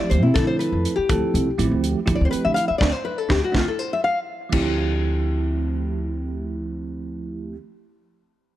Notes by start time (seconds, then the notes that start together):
Already playing: F3 A3 C4 E4 G4
0.00 muted upright bass stroke
0.10 D2 C5, closed hi-hat
0.23 C3 E4
0.34 D3 F3 A3 C4 E4 A4, kick, snare, closed hi-hat
0.47 C5
0.59 B4, closed hi-hat
0.72 F2
0.85 closed hi-hat
0.96 G4, muted upright bass stroke
1.09 D2 F3 A3 C4 E4 A4, kick, closed hi-hat
1.34 C2, closed hi-hat
1.58 A1 F3 A3 C4 E4 G4, closed hi-hat
1.71 D2
1.84 closed hi-hat
2.06 D2 F3 A3 C4 E4 G4, kick, closed hi-hat
2.15 D5
2.21 D2
2.25 C5
2.31 B4, muted upright bass stroke, closed hi-hat
2.45 D3 E5
2.54 F5, closed hi-hat
2.68 E5, muted upright bass stroke
2.78 D2 A3 C4 D4 D5, kick, snare
2.92 C5
3.05 B4
3.18 A4
3.29 D2 A3 C4 D4 G4, kick, snare
3.44 F#4
3.52 D2 A3 C4 D4, kick, snare
3.57 F4
3.68 A4
3.79 C5
3.93 E5
4.04 F5
4.50 D2 F3 A3 C4 E4, kick, crash
4.54 G4